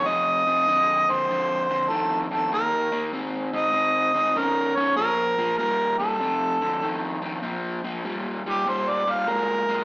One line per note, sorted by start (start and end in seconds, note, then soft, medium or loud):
0.06 0.42 F2 medium
0.06 0.42 C3 medium
0.06 1.12 D#5 loud
0.47 0.65 F2 medium
0.47 0.65 C3 medium
0.67 1.04 F2 medium
0.67 1.04 D3 medium
1.09 1.27 F2 medium
1.09 1.27 D3 medium
1.09 1.92 C5 medium
1.29 1.65 F2 medium
1.29 1.66 D3 medium
1.70 1.88 F2 medium
1.70 1.88 D3 medium
1.90 2.27 F2 medium
1.90 2.27 D#3 medium
1.90 2.20 A4 medium
2.31 2.49 F2 medium
2.31 2.50 D#3 medium
2.31 2.50 A4 medium
2.52 2.88 D#3 medium
2.52 2.88 A#3 medium
2.52 3.10 A#4 medium
2.92 3.11 D#3 medium
2.92 3.11 A#3 medium
3.13 3.49 D#3 medium
3.13 3.50 C4 medium
3.53 3.72 D#3 medium
3.53 3.72 C4 medium
3.53 4.39 D#5 loud
3.73 4.10 D#3 medium
3.73 4.11 C4 medium
4.14 4.33 D#3 medium
4.14 4.33 C4 medium
4.36 4.72 D#3 medium
4.36 4.73 C#4 medium
4.36 4.77 A#4 medium
4.76 4.95 D#3 medium
4.76 4.95 C#4 medium
4.76 4.96 C#5 medium
4.96 5.33 A#2 medium
4.96 5.34 F3 medium
4.96 5.54 A#4 loud
5.38 5.57 A#2 medium
5.38 5.57 F3 medium
5.58 5.95 A#2 medium
5.58 5.96 G3 medium
5.58 5.96 A#4 medium
5.98 6.18 A#2 medium
5.98 6.18 G3 medium
5.98 7.17 A4 medium
6.20 6.57 F2 medium
6.20 6.57 C3 medium
6.62 6.80 F2 medium
6.62 6.80 D3 medium
6.81 7.18 F2 medium
6.81 7.18 D#3 medium
7.22 7.41 F2 medium
7.22 7.41 D#3 medium
7.43 7.79 A#2 medium
7.43 7.79 F3 medium
7.84 8.02 A#2 medium
7.84 8.03 F3 medium
8.04 8.41 A#2 medium
8.04 8.41 G3 medium
8.46 8.64 A#2 medium
8.46 8.64 G3 medium
8.46 8.70 G4 medium
8.66 9.02 A#2 medium
8.66 9.02 G3 medium
8.66 8.91 C5 medium
8.89 9.13 D5 medium
9.07 9.25 A#2 medium
9.07 9.25 G3 medium
9.11 9.31 F5 medium
9.27 9.64 A#2 medium
9.27 9.64 G#3 medium
9.27 9.84 A#4 medium
9.69 9.84 A#2 medium
9.69 9.84 G#3 medium